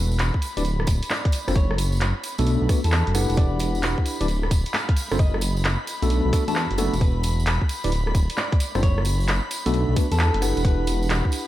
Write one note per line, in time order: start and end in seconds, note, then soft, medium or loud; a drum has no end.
0.00 0.31 E1 medium
0.00 11.47 B5 medium
0.12 tambourine medium
0.19 clap loud
0.19 closed hi-hat medium
0.19 tambourine soft
0.34 kick medium
0.42 closed hi-hat loud
0.42 tambourine medium
0.57 0.86 D1 loud
0.57 0.62 D4 medium
0.57 0.62 E4 medium
0.57 0.62 G4 medium
0.57 0.62 B4 medium
0.57 0.62 D5 medium
0.57 closed hi-hat medium
0.57 tambourine medium
0.65 closed hi-hat medium
0.65 tambourine soft
0.80 cross-stick medium
0.87 1.00 D1 medium
0.87 kick loud
0.87 closed hi-hat loud
0.87 tambourine loud
1.03 closed hi-hat medium
1.03 tambourine medium
1.10 1.39 D5 medium
1.10 clap loud
1.10 tambourine soft
1.25 kick loud
1.25 closed hi-hat medium
1.32 closed hi-hat loud
1.32 tambourine loud
1.48 2.13 F#1 medium
1.48 1.53 C4 loud
1.48 1.53 D4 medium
1.48 1.53 F4 medium
1.48 1.53 A4 medium
1.48 1.53 C5 loud
1.48 cross-stick medium
1.48 closed hi-hat soft
1.48 tambourine medium
1.55 1.72 C#5 medium
1.55 kick loud
1.55 closed hi-hat medium
1.55 tambourine soft
1.71 cross-stick medium
1.78 closed hi-hat loud
1.78 tambourine loud
1.92 tambourine medium
2.01 clap loud
2.01 closed hi-hat medium
2.01 tambourine soft
2.23 closed hi-hat loud
2.23 tambourine medium
2.38 2.58 B1 loud
2.38 2.67 A3 loud
2.38 2.67 B3 medium
2.38 2.67 D4 medium
2.38 2.67 F#4 medium
2.38 2.67 A4 loud
2.38 closed hi-hat medium
2.38 tambourine medium
2.46 closed hi-hat medium
2.46 tambourine soft
2.61 2.68 B1 loud
2.69 2.79 A3 medium
2.69 2.79 B3 medium
2.69 2.79 D4 medium
2.69 2.79 F#4 medium
2.69 2.79 B4 medium
2.69 kick loud
2.69 cross-stick soft
2.69 closed hi-hat loud
2.69 tambourine loud
2.84 3.03 E2 medium
2.84 3.31 A4 loud
2.84 closed hi-hat medium
2.84 tambourine medium
2.91 clap loud
2.91 tambourine soft
3.07 3.26 F#1 medium
3.07 closed hi-hat medium
3.15 4.17 D4 medium
3.15 4.17 E4 medium
3.15 4.17 G4 medium
3.15 4.17 B4 medium
3.15 4.17 F#5 medium
3.15 cross-stick medium
3.15 closed hi-hat medium
3.15 tambourine loud
3.30 3.95 E1 medium
3.30 closed hi-hat soft
3.30 tambourine medium
3.37 3.58 D5 loud
3.37 kick loud
3.37 closed hi-hat medium
3.37 tambourine soft
3.59 closed hi-hat loud
3.59 tambourine medium
3.75 tambourine medium
3.83 clap loud
3.83 closed hi-hat medium
3.83 tambourine soft
3.98 kick medium
4.06 closed hi-hat medium
4.06 tambourine medium
4.21 4.49 D1 loud
4.21 4.26 D4 medium
4.21 4.26 E4 medium
4.21 4.26 G4 medium
4.21 4.26 B4 medium
4.21 4.26 D5 medium
4.21 closed hi-hat medium
4.21 tambourine medium
4.28 closed hi-hat medium
4.28 tambourine soft
4.43 cross-stick medium
4.51 4.64 D1 medium
4.51 kick loud
4.51 closed hi-hat loud
4.51 tambourine medium
4.66 closed hi-hat medium
4.66 tambourine medium
4.74 5.02 F5 loud
4.74 clap loud
4.74 tambourine soft
4.89 kick loud
4.89 closed hi-hat medium
4.96 closed hi-hat loud
4.96 tambourine loud
5.11 5.77 F#1 medium
5.11 5.17 C4 loud
5.11 5.17 D4 medium
5.11 5.17 F4 medium
5.11 5.17 A4 medium
5.11 5.17 C5 loud
5.11 cross-stick medium
5.11 closed hi-hat soft
5.11 tambourine medium
5.19 5.36 D#5 medium
5.19 kick loud
5.19 closed hi-hat medium
5.34 cross-stick medium
5.41 closed hi-hat loud
5.41 tambourine loud
5.57 tambourine medium
5.65 clap loud
5.65 closed hi-hat medium
5.65 tambourine soft
5.87 closed hi-hat medium
5.87 tambourine medium
6.02 6.21 B1 loud
6.02 6.31 A3 medium
6.02 6.31 B3 medium
6.02 6.31 D4 medium
6.02 6.31 F#4 medium
6.02 6.31 A4 loud
6.02 closed hi-hat medium
6.02 tambourine medium
6.10 closed hi-hat medium
6.10 tambourine soft
6.25 6.32 B1 loud
6.33 6.43 A3 medium
6.33 6.43 B3 medium
6.33 6.43 D4 medium
6.33 6.43 F#4 medium
6.33 6.43 A4 medium
6.33 kick loud
6.33 cross-stick soft
6.33 closed hi-hat loud
6.33 tambourine loud
6.48 6.67 E2 medium
6.48 6.57 A3 medium
6.48 6.57 B3 medium
6.48 6.57 D4 medium
6.48 6.57 F#4 medium
6.48 6.57 A4 loud
6.48 6.95 A5 medium
6.48 closed hi-hat medium
6.48 tambourine medium
6.55 clap loud
6.55 tambourine soft
6.71 6.89 F#1 medium
6.71 closed hi-hat soft
6.78 6.94 A3 loud
6.78 6.94 B3 loud
6.78 6.94 D4 loud
6.78 6.94 F#4 loud
6.78 6.94 A4 loud
6.78 cross-stick medium
6.78 closed hi-hat medium
6.78 tambourine medium
6.93 7.58 E1 medium
6.93 closed hi-hat soft
6.93 tambourine medium
7.01 7.22 B4 loud
7.01 kick loud
7.01 closed hi-hat medium
7.01 tambourine soft
7.23 closed hi-hat loud
7.23 tambourine medium
7.40 tambourine soft
7.46 clap loud
7.46 closed hi-hat medium
7.46 tambourine soft
7.62 kick medium
7.69 closed hi-hat medium
7.69 tambourine medium
7.84 8.13 D1 loud
7.84 7.89 D4 medium
7.84 7.89 E4 medium
7.84 7.89 G4 medium
7.84 7.89 B4 medium
7.84 7.89 D5 medium
7.84 closed hi-hat medium
7.84 tambourine soft
7.92 closed hi-hat medium
7.92 tambourine soft
8.07 cross-stick medium
8.15 8.28 D1 medium
8.15 kick loud
8.15 closed hi-hat loud
8.15 tambourine medium
8.30 closed hi-hat medium
8.30 tambourine soft
8.37 8.66 D5 medium
8.37 clap loud
8.37 tambourine soft
8.52 kick loud
8.52 closed hi-hat medium
8.60 closed hi-hat medium
8.60 tambourine loud
8.75 9.40 F#1 medium
8.75 8.80 C4 loud
8.75 8.80 D4 medium
8.75 8.80 F4 medium
8.75 8.80 A4 medium
8.75 8.80 C5 loud
8.75 cross-stick medium
8.75 closed hi-hat soft
8.75 tambourine soft
8.83 8.99 C#5 medium
8.83 kick loud
8.83 closed hi-hat medium
8.83 tambourine soft
8.98 cross-stick medium
9.05 closed hi-hat loud
9.05 tambourine loud
9.20 tambourine medium
9.28 clap loud
9.28 closed hi-hat medium
9.28 tambourine soft
9.51 closed hi-hat loud
9.51 tambourine medium
9.66 9.85 B1 loud
9.66 9.95 A3 medium
9.66 9.95 B3 medium
9.66 9.95 D4 medium
9.66 9.95 F#4 medium
9.66 9.95 A4 loud
9.66 closed hi-hat medium
9.66 tambourine medium
9.74 closed hi-hat medium
9.74 tambourine soft
9.89 9.95 B1 loud
9.96 10.07 A3 medium
9.96 10.07 B3 medium
9.96 10.07 D4 medium
9.96 10.07 F#4 medium
9.96 10.07 B4 medium
9.96 kick loud
9.96 cross-stick soft
9.96 closed hi-hat loud
9.96 tambourine medium
10.11 10.30 E2 medium
10.11 10.59 A4 medium
10.11 closed hi-hat medium
10.11 tambourine medium
10.19 clap loud
10.19 tambourine soft
10.34 10.53 F#1 medium
10.34 closed hi-hat medium
10.42 11.44 D4 medium
10.42 11.44 E4 medium
10.42 11.44 G4 medium
10.42 11.44 B4 medium
10.42 11.44 F#5 medium
10.42 cross-stick medium
10.42 closed hi-hat medium
10.42 tambourine loud
10.57 11.22 E1 medium
10.57 closed hi-hat soft
10.57 tambourine soft
10.65 10.86 B4 loud
10.65 kick loud
10.65 closed hi-hat medium
10.65 tambourine soft
10.87 closed hi-hat loud
10.87 tambourine medium
11.03 tambourine soft
11.10 clap loud
11.10 closed hi-hat medium
11.10 tambourine soft
11.25 kick medium
11.32 closed hi-hat loud
11.32 tambourine medium